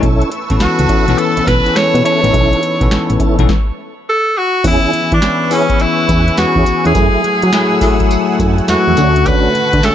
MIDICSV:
0, 0, Header, 1, 7, 480
1, 0, Start_track
1, 0, Tempo, 576923
1, 24, Time_signature, 4, 2, 24, 8
1, 8278, End_track
2, 0, Start_track
2, 0, Title_t, "Analog synth pad"
2, 0, Program_c, 0, 89
2, 0, Note_on_c, 0, 85, 76
2, 27, Note_on_c, 0, 71, 81
2, 28, Note_on_c, 0, 81, 83
2, 28, Note_on_c, 0, 88, 97
2, 2874, Note_off_c, 0, 85, 0
2, 2877, Note_off_c, 0, 71, 0
2, 2877, Note_off_c, 0, 81, 0
2, 2877, Note_off_c, 0, 88, 0
2, 3867, Note_on_c, 0, 71, 90
2, 3867, Note_on_c, 0, 88, 95
2, 3869, Note_on_c, 0, 80, 83
2, 3870, Note_on_c, 0, 85, 79
2, 5766, Note_off_c, 0, 71, 0
2, 5766, Note_off_c, 0, 88, 0
2, 5768, Note_off_c, 0, 85, 0
2, 5787, Note_on_c, 0, 78, 83
2, 5787, Note_on_c, 0, 88, 93
2, 5789, Note_on_c, 0, 57, 85
2, 7433, Note_off_c, 0, 80, 0
2, 7449, Note_off_c, 0, 78, 0
2, 7449, Note_off_c, 0, 88, 0
2, 7464, Note_on_c, 0, 78, 77
2, 7464, Note_on_c, 0, 81, 86
2, 7465, Note_on_c, 0, 85, 75
2, 8278, Note_off_c, 0, 57, 0
2, 8278, Note_off_c, 0, 78, 0
2, 8278, Note_off_c, 0, 81, 0
2, 8278, Note_off_c, 0, 85, 0
2, 8278, End_track
3, 0, Start_track
3, 0, Title_t, "Tenor saxophone"
3, 0, Program_c, 1, 66
3, 515, Note_on_c, 1, 66, 95
3, 983, Note_on_c, 1, 69, 97
3, 995, Note_off_c, 1, 66, 0
3, 1224, Note_on_c, 1, 71, 107
3, 1236, Note_off_c, 1, 69, 0
3, 1468, Note_on_c, 1, 73, 109
3, 1481, Note_off_c, 1, 71, 0
3, 1701, Note_off_c, 1, 73, 0
3, 1706, Note_on_c, 1, 73, 112
3, 2632, Note_off_c, 1, 73, 0
3, 3405, Note_on_c, 1, 69, 114
3, 3643, Note_on_c, 1, 66, 100
3, 3655, Note_off_c, 1, 69, 0
3, 3873, Note_off_c, 1, 66, 0
3, 3887, Note_on_c, 1, 64, 109
3, 4244, Note_off_c, 1, 64, 0
3, 4275, Note_on_c, 1, 62, 94
3, 4599, Note_on_c, 1, 61, 90
3, 4611, Note_off_c, 1, 62, 0
3, 4835, Note_on_c, 1, 64, 106
3, 4848, Note_off_c, 1, 61, 0
3, 5310, Note_off_c, 1, 64, 0
3, 5315, Note_on_c, 1, 66, 102
3, 5678, Note_off_c, 1, 66, 0
3, 5711, Note_on_c, 1, 68, 107
3, 6976, Note_off_c, 1, 68, 0
3, 7234, Note_on_c, 1, 66, 109
3, 7714, Note_on_c, 1, 71, 127
3, 7726, Note_off_c, 1, 66, 0
3, 8190, Note_on_c, 1, 69, 119
3, 8203, Note_off_c, 1, 71, 0
3, 8278, Note_off_c, 1, 69, 0
3, 8278, End_track
4, 0, Start_track
4, 0, Title_t, "Tonewheel organ"
4, 0, Program_c, 2, 16
4, 23, Note_on_c, 2, 61, 99
4, 24, Note_on_c, 2, 64, 90
4, 27, Note_on_c, 2, 69, 110
4, 250, Note_off_c, 2, 61, 0
4, 250, Note_off_c, 2, 64, 0
4, 252, Note_off_c, 2, 69, 0
4, 741, Note_on_c, 2, 61, 76
4, 743, Note_on_c, 2, 64, 65
4, 745, Note_on_c, 2, 69, 77
4, 879, Note_off_c, 2, 61, 0
4, 880, Note_off_c, 2, 64, 0
4, 881, Note_off_c, 2, 69, 0
4, 1137, Note_on_c, 2, 61, 69
4, 1141, Note_on_c, 2, 64, 67
4, 1143, Note_on_c, 2, 69, 76
4, 1212, Note_off_c, 2, 61, 0
4, 1214, Note_off_c, 2, 64, 0
4, 1215, Note_off_c, 2, 69, 0
4, 1698, Note_on_c, 2, 61, 85
4, 1701, Note_on_c, 2, 64, 76
4, 1703, Note_on_c, 2, 69, 92
4, 1837, Note_off_c, 2, 61, 0
4, 1839, Note_off_c, 2, 64, 0
4, 1840, Note_off_c, 2, 69, 0
4, 1939, Note_on_c, 2, 61, 94
4, 1940, Note_on_c, 2, 64, 94
4, 1944, Note_on_c, 2, 69, 116
4, 2168, Note_off_c, 2, 61, 0
4, 2168, Note_off_c, 2, 64, 0
4, 2170, Note_off_c, 2, 69, 0
4, 2658, Note_on_c, 2, 61, 73
4, 2660, Note_on_c, 2, 64, 73
4, 2665, Note_on_c, 2, 69, 86
4, 2797, Note_off_c, 2, 61, 0
4, 2798, Note_off_c, 2, 64, 0
4, 2801, Note_off_c, 2, 69, 0
4, 3859, Note_on_c, 2, 61, 99
4, 3861, Note_on_c, 2, 64, 93
4, 3863, Note_on_c, 2, 68, 112
4, 4088, Note_off_c, 2, 61, 0
4, 4089, Note_off_c, 2, 64, 0
4, 4090, Note_off_c, 2, 68, 0
4, 4580, Note_on_c, 2, 61, 78
4, 4583, Note_on_c, 2, 64, 72
4, 4586, Note_on_c, 2, 68, 81
4, 4718, Note_off_c, 2, 61, 0
4, 4720, Note_off_c, 2, 64, 0
4, 4721, Note_off_c, 2, 68, 0
4, 5061, Note_on_c, 2, 61, 77
4, 5063, Note_on_c, 2, 64, 70
4, 5068, Note_on_c, 2, 68, 84
4, 5199, Note_off_c, 2, 61, 0
4, 5200, Note_off_c, 2, 64, 0
4, 5202, Note_off_c, 2, 68, 0
4, 5458, Note_on_c, 2, 61, 76
4, 5460, Note_on_c, 2, 64, 73
4, 5461, Note_on_c, 2, 68, 93
4, 5533, Note_off_c, 2, 61, 0
4, 5534, Note_off_c, 2, 64, 0
4, 5535, Note_off_c, 2, 68, 0
4, 5694, Note_on_c, 2, 61, 71
4, 5698, Note_on_c, 2, 64, 72
4, 5700, Note_on_c, 2, 68, 81
4, 5771, Note_off_c, 2, 61, 0
4, 5773, Note_off_c, 2, 64, 0
4, 5774, Note_off_c, 2, 68, 0
4, 5781, Note_on_c, 2, 57, 98
4, 5784, Note_on_c, 2, 64, 95
4, 5787, Note_on_c, 2, 68, 106
4, 6009, Note_off_c, 2, 57, 0
4, 6010, Note_off_c, 2, 64, 0
4, 6012, Note_off_c, 2, 68, 0
4, 6502, Note_on_c, 2, 57, 79
4, 6504, Note_on_c, 2, 64, 66
4, 6509, Note_on_c, 2, 68, 87
4, 6639, Note_off_c, 2, 57, 0
4, 6640, Note_off_c, 2, 64, 0
4, 6642, Note_off_c, 2, 68, 0
4, 6982, Note_on_c, 2, 57, 78
4, 6984, Note_on_c, 2, 64, 69
4, 6986, Note_on_c, 2, 68, 80
4, 7119, Note_off_c, 2, 57, 0
4, 7120, Note_off_c, 2, 64, 0
4, 7121, Note_off_c, 2, 68, 0
4, 7460, Note_on_c, 2, 61, 80
4, 7464, Note_on_c, 2, 62, 68
4, 7464, Note_on_c, 2, 66, 90
4, 7598, Note_off_c, 2, 61, 0
4, 7600, Note_off_c, 2, 62, 0
4, 7600, Note_off_c, 2, 66, 0
4, 7700, Note_on_c, 2, 61, 99
4, 7702, Note_on_c, 2, 62, 89
4, 7705, Note_on_c, 2, 66, 110
4, 7928, Note_off_c, 2, 61, 0
4, 7929, Note_off_c, 2, 62, 0
4, 7931, Note_off_c, 2, 66, 0
4, 8278, End_track
5, 0, Start_track
5, 0, Title_t, "Tine electric piano"
5, 0, Program_c, 3, 4
5, 0, Control_c, 3, 64, 127
5, 35, Control_c, 3, 64, 0
5, 185, Control_c, 3, 64, 127
5, 418, Note_on_c, 3, 52, 85
5, 419, Note_on_c, 3, 59, 74
5, 425, Note_on_c, 3, 61, 78
5, 428, Note_on_c, 3, 69, 89
5, 865, Note_off_c, 3, 52, 0
5, 866, Note_off_c, 3, 59, 0
5, 869, Note_off_c, 3, 61, 0
5, 870, Note_off_c, 3, 69, 0
5, 904, Note_on_c, 3, 52, 78
5, 906, Note_on_c, 3, 59, 78
5, 910, Note_on_c, 3, 61, 72
5, 914, Note_on_c, 3, 69, 87
5, 1348, Note_off_c, 3, 52, 0
5, 1350, Note_off_c, 3, 59, 0
5, 1352, Note_off_c, 3, 61, 0
5, 1353, Note_off_c, 3, 69, 0
5, 1377, Note_on_c, 3, 52, 73
5, 1382, Note_on_c, 3, 59, 61
5, 1387, Note_on_c, 3, 61, 64
5, 1391, Note_on_c, 3, 68, 61
5, 1423, Note_off_c, 3, 68, 0
5, 1444, Note_on_c, 3, 69, 78
5, 1825, Note_off_c, 3, 52, 0
5, 1827, Note_off_c, 3, 59, 0
5, 1830, Note_off_c, 3, 61, 0
5, 1858, Note_off_c, 3, 69, 0
5, 1860, Note_on_c, 3, 52, 77
5, 1863, Note_on_c, 3, 59, 76
5, 1866, Note_on_c, 3, 61, 74
5, 1868, Note_on_c, 3, 63, 87
5, 2306, Note_off_c, 3, 52, 0
5, 2308, Note_off_c, 3, 59, 0
5, 2309, Note_off_c, 3, 61, 0
5, 2311, Note_off_c, 3, 63, 0
5, 2336, Note_on_c, 3, 52, 84
5, 2341, Note_on_c, 3, 59, 78
5, 2345, Note_on_c, 3, 61, 77
5, 2350, Note_on_c, 3, 69, 95
5, 2784, Note_off_c, 3, 52, 0
5, 2787, Note_off_c, 3, 59, 0
5, 2789, Note_off_c, 3, 61, 0
5, 2791, Note_off_c, 3, 69, 0
5, 2820, Note_on_c, 3, 52, 90
5, 2822, Note_on_c, 3, 59, 77
5, 2825, Note_on_c, 3, 61, 76
5, 2828, Note_on_c, 3, 69, 94
5, 2905, Note_off_c, 3, 52, 0
5, 2905, Note_off_c, 3, 59, 0
5, 2907, Note_off_c, 3, 61, 0
5, 2908, Note_off_c, 3, 69, 0
5, 2912, Control_c, 3, 64, 0
5, 3867, Note_on_c, 3, 52, 73
5, 3870, Note_on_c, 3, 59, 71
5, 3873, Note_on_c, 3, 61, 68
5, 3877, Note_on_c, 3, 68, 85
5, 3997, Control_c, 3, 64, 127
5, 4327, Note_off_c, 3, 52, 0
5, 4329, Note_off_c, 3, 59, 0
5, 4330, Note_off_c, 3, 61, 0
5, 4332, Note_off_c, 3, 68, 0
5, 4347, Note_on_c, 3, 52, 85
5, 4351, Note_on_c, 3, 59, 79
5, 4354, Note_on_c, 3, 61, 81
5, 4358, Note_on_c, 3, 64, 92
5, 4576, Note_off_c, 3, 52, 0
5, 4579, Note_off_c, 3, 59, 0
5, 4580, Note_off_c, 3, 61, 0
5, 4582, Note_off_c, 3, 64, 0
5, 4587, Note_on_c, 3, 52, 68
5, 4588, Note_on_c, 3, 59, 65
5, 4594, Note_on_c, 3, 61, 73
5, 4597, Note_on_c, 3, 68, 85
5, 5278, Note_off_c, 3, 52, 0
5, 5279, Note_off_c, 3, 59, 0
5, 5282, Note_off_c, 3, 61, 0
5, 5283, Note_off_c, 3, 68, 0
5, 5306, Note_on_c, 3, 52, 80
5, 5309, Note_on_c, 3, 59, 64
5, 5313, Note_on_c, 3, 61, 71
5, 5315, Note_on_c, 3, 68, 80
5, 5767, Note_off_c, 3, 52, 0
5, 5769, Note_off_c, 3, 59, 0
5, 5771, Note_off_c, 3, 61, 0
5, 5771, Note_off_c, 3, 68, 0
5, 5787, Note_on_c, 3, 54, 81
5, 5792, Note_on_c, 3, 57, 70
5, 5794, Note_on_c, 3, 64, 69
5, 5795, Control_c, 3, 64, 0
5, 5796, Note_on_c, 3, 68, 81
5, 5941, Control_c, 3, 64, 127
5, 6247, Note_off_c, 3, 54, 0
5, 6250, Note_off_c, 3, 57, 0
5, 6251, Note_off_c, 3, 64, 0
5, 6252, Note_off_c, 3, 68, 0
5, 6268, Note_on_c, 3, 54, 96
5, 6272, Note_on_c, 3, 57, 94
5, 6273, Note_on_c, 3, 64, 98
5, 6277, Note_on_c, 3, 68, 107
5, 6494, Note_off_c, 3, 54, 0
5, 6499, Note_off_c, 3, 57, 0
5, 6500, Note_off_c, 3, 64, 0
5, 6501, Note_off_c, 3, 68, 0
5, 6504, Note_on_c, 3, 54, 93
5, 6508, Note_on_c, 3, 57, 84
5, 6511, Note_on_c, 3, 64, 77
5, 6516, Note_on_c, 3, 68, 93
5, 7197, Note_off_c, 3, 54, 0
5, 7199, Note_off_c, 3, 57, 0
5, 7200, Note_off_c, 3, 64, 0
5, 7203, Note_off_c, 3, 68, 0
5, 7224, Note_on_c, 3, 54, 70
5, 7226, Note_on_c, 3, 57, 71
5, 7230, Note_on_c, 3, 64, 70
5, 7233, Note_on_c, 3, 71, 83
5, 7456, Note_off_c, 3, 57, 0
5, 7464, Note_off_c, 3, 54, 0
5, 7464, Note_on_c, 3, 50, 83
5, 7466, Note_on_c, 3, 57, 74
5, 7467, Note_off_c, 3, 64, 0
5, 7468, Note_off_c, 3, 71, 0
5, 7469, Note_on_c, 3, 61, 68
5, 7471, Note_on_c, 3, 66, 93
5, 7476, Control_c, 3, 64, 0
5, 7603, Control_c, 3, 64, 127
5, 8157, Note_off_c, 3, 50, 0
5, 8158, Note_off_c, 3, 57, 0
5, 8159, Note_off_c, 3, 61, 0
5, 8160, Note_off_c, 3, 66, 0
5, 8184, Note_on_c, 3, 50, 85
5, 8188, Note_on_c, 3, 57, 84
5, 8190, Note_on_c, 3, 61, 84
5, 8193, Note_on_c, 3, 68, 103
5, 8278, Note_off_c, 3, 50, 0
5, 8278, Note_off_c, 3, 57, 0
5, 8278, Note_off_c, 3, 61, 0
5, 8278, Note_off_c, 3, 68, 0
5, 8278, End_track
6, 0, Start_track
6, 0, Title_t, "FM bass"
6, 0, Program_c, 4, 39
6, 24, Note_on_c, 4, 35, 117
6, 199, Note_off_c, 4, 35, 0
6, 421, Note_on_c, 4, 33, 79
6, 482, Note_off_c, 4, 33, 0
6, 505, Note_on_c, 4, 37, 48
6, 567, Note_off_c, 4, 37, 0
6, 661, Note_on_c, 4, 37, 89
6, 722, Note_off_c, 4, 37, 0
6, 899, Note_on_c, 4, 35, 87
6, 961, Note_off_c, 4, 35, 0
6, 1141, Note_on_c, 4, 35, 53
6, 1175, Note_off_c, 4, 35, 0
6, 1228, Note_on_c, 4, 35, 92
6, 1340, Note_off_c, 4, 35, 0
6, 1617, Note_on_c, 4, 47, 97
6, 1679, Note_off_c, 4, 47, 0
6, 1859, Note_on_c, 4, 33, 99
6, 1921, Note_off_c, 4, 33, 0
6, 1947, Note_on_c, 4, 35, 111
6, 2120, Note_off_c, 4, 35, 0
6, 2340, Note_on_c, 4, 35, 92
6, 2401, Note_off_c, 4, 35, 0
6, 2581, Note_on_c, 4, 33, 92
6, 2642, Note_off_c, 4, 33, 0
6, 2819, Note_on_c, 4, 35, 89
6, 2881, Note_off_c, 4, 35, 0
6, 3865, Note_on_c, 4, 40, 119
6, 3978, Note_off_c, 4, 40, 0
6, 4108, Note_on_c, 4, 52, 51
6, 4169, Note_off_c, 4, 52, 0
6, 4263, Note_on_c, 4, 52, 88
6, 4323, Note_off_c, 4, 52, 0
6, 5068, Note_on_c, 4, 40, 102
6, 5241, Note_off_c, 4, 40, 0
6, 5310, Note_on_c, 4, 40, 53
6, 5371, Note_off_c, 4, 40, 0
6, 5458, Note_on_c, 4, 40, 89
6, 5520, Note_off_c, 4, 40, 0
6, 5706, Note_on_c, 4, 40, 87
6, 5765, Note_off_c, 4, 40, 0
6, 5785, Note_on_c, 4, 42, 108
6, 5897, Note_off_c, 4, 42, 0
6, 6028, Note_on_c, 4, 54, 53
6, 6089, Note_off_c, 4, 54, 0
6, 6185, Note_on_c, 4, 54, 90
6, 6244, Note_off_c, 4, 54, 0
6, 6986, Note_on_c, 4, 42, 101
6, 7160, Note_off_c, 4, 42, 0
6, 7229, Note_on_c, 4, 40, 49
6, 7290, Note_off_c, 4, 40, 0
6, 7385, Note_on_c, 4, 40, 83
6, 7445, Note_off_c, 4, 40, 0
6, 7470, Note_on_c, 4, 38, 114
6, 7755, Note_off_c, 4, 38, 0
6, 7949, Note_on_c, 4, 50, 48
6, 8010, Note_off_c, 4, 50, 0
6, 8100, Note_on_c, 4, 50, 89
6, 8161, Note_off_c, 4, 50, 0
6, 8278, End_track
7, 0, Start_track
7, 0, Title_t, "Drums"
7, 23, Note_on_c, 9, 36, 127
7, 24, Note_on_c, 9, 42, 75
7, 106, Note_off_c, 9, 36, 0
7, 107, Note_off_c, 9, 42, 0
7, 179, Note_on_c, 9, 42, 53
7, 262, Note_off_c, 9, 42, 0
7, 263, Note_on_c, 9, 42, 71
7, 346, Note_off_c, 9, 42, 0
7, 416, Note_on_c, 9, 42, 58
7, 418, Note_on_c, 9, 36, 101
7, 499, Note_off_c, 9, 42, 0
7, 501, Note_off_c, 9, 36, 0
7, 501, Note_on_c, 9, 38, 114
7, 501, Note_on_c, 9, 42, 72
7, 584, Note_off_c, 9, 38, 0
7, 584, Note_off_c, 9, 42, 0
7, 655, Note_on_c, 9, 42, 64
7, 738, Note_off_c, 9, 42, 0
7, 741, Note_on_c, 9, 36, 101
7, 742, Note_on_c, 9, 42, 76
7, 824, Note_off_c, 9, 36, 0
7, 825, Note_off_c, 9, 42, 0
7, 899, Note_on_c, 9, 42, 58
7, 982, Note_off_c, 9, 42, 0
7, 984, Note_on_c, 9, 42, 66
7, 1067, Note_off_c, 9, 42, 0
7, 1140, Note_on_c, 9, 42, 62
7, 1223, Note_off_c, 9, 42, 0
7, 1225, Note_on_c, 9, 36, 93
7, 1226, Note_on_c, 9, 38, 64
7, 1228, Note_on_c, 9, 42, 67
7, 1308, Note_off_c, 9, 36, 0
7, 1309, Note_off_c, 9, 38, 0
7, 1311, Note_off_c, 9, 42, 0
7, 1383, Note_on_c, 9, 42, 46
7, 1465, Note_off_c, 9, 42, 0
7, 1465, Note_on_c, 9, 42, 73
7, 1466, Note_on_c, 9, 38, 112
7, 1548, Note_off_c, 9, 42, 0
7, 1550, Note_off_c, 9, 38, 0
7, 1624, Note_on_c, 9, 42, 57
7, 1707, Note_off_c, 9, 42, 0
7, 1709, Note_on_c, 9, 42, 71
7, 1793, Note_off_c, 9, 42, 0
7, 1865, Note_on_c, 9, 42, 51
7, 1944, Note_on_c, 9, 36, 124
7, 1948, Note_off_c, 9, 42, 0
7, 1948, Note_on_c, 9, 42, 74
7, 2027, Note_off_c, 9, 36, 0
7, 2031, Note_off_c, 9, 42, 0
7, 2104, Note_on_c, 9, 42, 49
7, 2187, Note_off_c, 9, 42, 0
7, 2187, Note_on_c, 9, 42, 72
7, 2270, Note_off_c, 9, 42, 0
7, 2339, Note_on_c, 9, 36, 102
7, 2340, Note_on_c, 9, 42, 58
7, 2423, Note_off_c, 9, 36, 0
7, 2423, Note_off_c, 9, 42, 0
7, 2423, Note_on_c, 9, 38, 119
7, 2424, Note_on_c, 9, 42, 74
7, 2507, Note_off_c, 9, 38, 0
7, 2507, Note_off_c, 9, 42, 0
7, 2577, Note_on_c, 9, 42, 64
7, 2660, Note_off_c, 9, 42, 0
7, 2661, Note_on_c, 9, 36, 97
7, 2661, Note_on_c, 9, 42, 77
7, 2745, Note_off_c, 9, 36, 0
7, 2745, Note_off_c, 9, 42, 0
7, 2818, Note_on_c, 9, 36, 113
7, 2818, Note_on_c, 9, 42, 61
7, 2901, Note_off_c, 9, 36, 0
7, 2901, Note_off_c, 9, 42, 0
7, 2902, Note_on_c, 9, 36, 102
7, 2903, Note_on_c, 9, 38, 89
7, 2985, Note_off_c, 9, 36, 0
7, 2986, Note_off_c, 9, 38, 0
7, 3863, Note_on_c, 9, 36, 127
7, 3863, Note_on_c, 9, 42, 70
7, 3863, Note_on_c, 9, 49, 103
7, 3863, Note_on_c, 9, 54, 75
7, 3946, Note_off_c, 9, 36, 0
7, 3946, Note_off_c, 9, 42, 0
7, 3946, Note_off_c, 9, 49, 0
7, 3946, Note_off_c, 9, 54, 0
7, 4105, Note_on_c, 9, 42, 75
7, 4188, Note_off_c, 9, 42, 0
7, 4259, Note_on_c, 9, 42, 62
7, 4260, Note_on_c, 9, 36, 97
7, 4342, Note_off_c, 9, 42, 0
7, 4343, Note_off_c, 9, 36, 0
7, 4343, Note_on_c, 9, 38, 120
7, 4343, Note_on_c, 9, 42, 73
7, 4343, Note_on_c, 9, 54, 94
7, 4426, Note_off_c, 9, 38, 0
7, 4426, Note_off_c, 9, 54, 0
7, 4427, Note_off_c, 9, 42, 0
7, 4583, Note_on_c, 9, 46, 77
7, 4584, Note_on_c, 9, 54, 67
7, 4666, Note_off_c, 9, 46, 0
7, 4668, Note_off_c, 9, 54, 0
7, 4739, Note_on_c, 9, 36, 109
7, 4740, Note_on_c, 9, 42, 58
7, 4821, Note_on_c, 9, 54, 65
7, 4822, Note_off_c, 9, 36, 0
7, 4823, Note_off_c, 9, 42, 0
7, 4823, Note_on_c, 9, 42, 70
7, 4905, Note_off_c, 9, 54, 0
7, 4906, Note_off_c, 9, 42, 0
7, 5065, Note_on_c, 9, 36, 89
7, 5066, Note_on_c, 9, 42, 75
7, 5066, Note_on_c, 9, 54, 74
7, 5148, Note_off_c, 9, 36, 0
7, 5149, Note_off_c, 9, 42, 0
7, 5150, Note_off_c, 9, 54, 0
7, 5223, Note_on_c, 9, 42, 49
7, 5304, Note_off_c, 9, 42, 0
7, 5304, Note_on_c, 9, 42, 71
7, 5305, Note_on_c, 9, 38, 108
7, 5305, Note_on_c, 9, 54, 103
7, 5387, Note_off_c, 9, 42, 0
7, 5388, Note_off_c, 9, 38, 0
7, 5388, Note_off_c, 9, 54, 0
7, 5457, Note_on_c, 9, 36, 98
7, 5540, Note_off_c, 9, 36, 0
7, 5541, Note_on_c, 9, 54, 66
7, 5544, Note_on_c, 9, 42, 71
7, 5625, Note_off_c, 9, 54, 0
7, 5627, Note_off_c, 9, 42, 0
7, 5702, Note_on_c, 9, 42, 54
7, 5781, Note_off_c, 9, 42, 0
7, 5781, Note_on_c, 9, 42, 76
7, 5781, Note_on_c, 9, 54, 73
7, 5783, Note_on_c, 9, 36, 127
7, 5864, Note_off_c, 9, 42, 0
7, 5864, Note_off_c, 9, 54, 0
7, 5866, Note_off_c, 9, 36, 0
7, 6025, Note_on_c, 9, 42, 71
7, 6108, Note_off_c, 9, 42, 0
7, 6177, Note_on_c, 9, 42, 61
7, 6260, Note_off_c, 9, 42, 0
7, 6261, Note_on_c, 9, 54, 90
7, 6262, Note_on_c, 9, 38, 116
7, 6262, Note_on_c, 9, 42, 75
7, 6344, Note_off_c, 9, 54, 0
7, 6345, Note_off_c, 9, 38, 0
7, 6345, Note_off_c, 9, 42, 0
7, 6500, Note_on_c, 9, 46, 75
7, 6501, Note_on_c, 9, 36, 103
7, 6501, Note_on_c, 9, 54, 65
7, 6583, Note_off_c, 9, 46, 0
7, 6585, Note_off_c, 9, 36, 0
7, 6585, Note_off_c, 9, 54, 0
7, 6656, Note_on_c, 9, 42, 61
7, 6659, Note_on_c, 9, 36, 116
7, 6739, Note_off_c, 9, 42, 0
7, 6742, Note_off_c, 9, 36, 0
7, 6745, Note_on_c, 9, 54, 66
7, 6747, Note_on_c, 9, 42, 73
7, 6828, Note_off_c, 9, 54, 0
7, 6830, Note_off_c, 9, 42, 0
7, 6985, Note_on_c, 9, 36, 87
7, 6986, Note_on_c, 9, 42, 69
7, 6986, Note_on_c, 9, 54, 75
7, 7068, Note_off_c, 9, 36, 0
7, 7070, Note_off_c, 9, 42, 0
7, 7070, Note_off_c, 9, 54, 0
7, 7141, Note_on_c, 9, 42, 46
7, 7223, Note_off_c, 9, 42, 0
7, 7223, Note_on_c, 9, 42, 69
7, 7224, Note_on_c, 9, 38, 109
7, 7224, Note_on_c, 9, 54, 100
7, 7306, Note_off_c, 9, 42, 0
7, 7307, Note_off_c, 9, 38, 0
7, 7307, Note_off_c, 9, 54, 0
7, 7462, Note_on_c, 9, 54, 68
7, 7464, Note_on_c, 9, 42, 68
7, 7545, Note_off_c, 9, 54, 0
7, 7547, Note_off_c, 9, 42, 0
7, 7622, Note_on_c, 9, 42, 53
7, 7704, Note_off_c, 9, 42, 0
7, 7704, Note_on_c, 9, 36, 127
7, 7704, Note_on_c, 9, 42, 75
7, 7704, Note_on_c, 9, 54, 77
7, 7787, Note_off_c, 9, 36, 0
7, 7787, Note_off_c, 9, 42, 0
7, 7787, Note_off_c, 9, 54, 0
7, 7946, Note_on_c, 9, 42, 69
7, 8029, Note_off_c, 9, 42, 0
7, 8097, Note_on_c, 9, 42, 58
7, 8098, Note_on_c, 9, 36, 99
7, 8180, Note_off_c, 9, 42, 0
7, 8180, Note_on_c, 9, 54, 94
7, 8181, Note_off_c, 9, 36, 0
7, 8181, Note_on_c, 9, 38, 116
7, 8181, Note_on_c, 9, 42, 74
7, 8264, Note_off_c, 9, 38, 0
7, 8264, Note_off_c, 9, 54, 0
7, 8265, Note_off_c, 9, 42, 0
7, 8278, End_track
0, 0, End_of_file